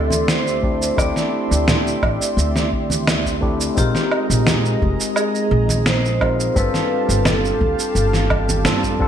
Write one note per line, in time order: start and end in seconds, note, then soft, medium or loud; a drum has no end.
0.00 0.89 D2 medium
0.00 0.58 A3 medium
0.00 0.58 C4 medium
0.00 0.59 D4 medium
0.00 0.60 E4 medium
0.00 0.60 G4 medium
0.00 3.73 G4 medium
0.00 0.31 A4 medium
0.00 3.73 D5 medium
0.00 3.73 E5 medium
0.00 3.73 C6 medium
0.10 high conga medium
0.10 shaker medium
0.28 1.01 C5 medium
0.28 snare loud
0.28 shaker medium
0.47 shaker soft
0.62 0.93 A3 medium
0.62 0.94 C4 medium
0.62 0.94 D4 medium
0.62 0.94 E4 medium
0.62 0.95 G4 medium
0.62 kick loud
0.82 shaker medium
0.96 1.10 D2 medium
0.96 3.37 A3 medium
0.96 3.38 C4 medium
0.96 3.38 D4 medium
0.96 3.39 E4 medium
0.96 1.64 D5 loud
0.96 kick loud
0.96 low woodblock medium
0.96 shaker soft
1.01 3.40 G4 medium
1.16 snare soft
1.16 shaker soft
1.51 1.94 D2 medium
1.51 shaker medium
1.68 2.69 D5 medium
1.68 snare medium
1.68 low conga medium
1.68 shaker medium
1.87 shaker soft
2.03 2.15 A1 medium
2.03 kick medium
2.03 low woodblock medium
2.22 shaker medium
2.37 3.68 D2 medium
2.37 shaker medium
2.56 snare soft
2.56 shaker soft
2.73 kick medium
2.90 high conga medium
2.90 shaker medium
3.07 snare loud
3.07 low woodblock medium
3.07 shaker medium
3.26 kick medium
3.26 shaker soft
3.41 3.72 A3 medium
3.41 3.73 C4 medium
3.41 3.73 D4 medium
3.41 3.73 E4 medium
3.41 3.73 G4 medium
3.41 kick loud
3.61 shaker medium
3.75 3.89 A#1 medium
3.75 6.16 G#3 medium
3.75 6.53 G#3 medium
3.75 6.17 C4 medium
3.75 6.17 D#4 medium
3.75 6.18 F4 medium
3.75 5.21 G4 medium
3.75 6.54 D#5 medium
3.75 6.54 A#5 medium
3.75 kick loud
3.75 shaker medium
3.79 6.18 A#4 medium
3.95 snare soft
3.95 shaker soft
4.11 low woodblock medium
4.30 4.72 A#1 medium
4.30 shaker medium
4.47 snare medium
4.47 low conga medium
4.47 shaker medium
4.65 shaker soft
4.82 4.94 F1 medium
4.82 kick loud
5.00 shaker medium
5.16 5.83 G#4 medium
5.16 low woodblock medium
5.16 shaker medium
5.35 shaker soft
5.51 6.47 A#1 medium
5.69 high conga medium
5.69 shaker medium
5.86 6.59 C5 medium
5.86 snare loud
5.86 shaker medium
6.05 shaker soft
6.20 6.52 G#3 medium
6.20 6.52 C4 medium
6.20 6.52 D#4 medium
6.20 6.53 F4 medium
6.20 6.53 A#4 medium
6.20 kick loud
6.20 low woodblock medium
6.40 shaker medium
6.54 6.68 G1 medium
6.54 8.61 G3 medium
6.54 8.62 C4 medium
6.54 8.62 D4 medium
6.54 8.63 F4 medium
6.54 9.08 G4 medium
6.54 7.29 B4 medium
6.54 9.08 F5 medium
6.54 9.08 A5 medium
6.54 kick loud
6.54 shaker medium
6.59 8.64 A4 medium
6.74 snare soft
6.74 shaker soft
7.09 7.51 G1 medium
7.09 shaker medium
7.25 8.27 A4 medium
7.25 snare medium
7.25 low conga medium
7.25 low woodblock medium
7.25 shaker medium
7.45 shaker soft
7.61 7.73 D2 medium
7.61 kick loud
7.79 shaker medium
7.95 8.65 G1 medium
7.95 shaker soft
8.13 snare soft
8.13 shaker soft
8.30 kick medium
8.30 high conga medium
8.30 low woodblock medium
8.49 high conga medium
8.49 shaker medium
8.64 9.00 G2 medium
8.64 8.96 G3 medium
8.64 8.96 C4 medium
8.64 8.97 D4 medium
8.64 8.97 F4 medium
8.64 8.97 A4 medium
8.64 snare medium
8.64 shaker medium
8.84 kick medium
8.84 shaker soft
8.99 9.08 D2 medium
8.99 9.08 G3 medium
8.99 9.08 C4 medium
8.99 9.08 D4 medium
8.99 9.08 F4 medium
8.99 9.08 A4 medium
8.99 kick loud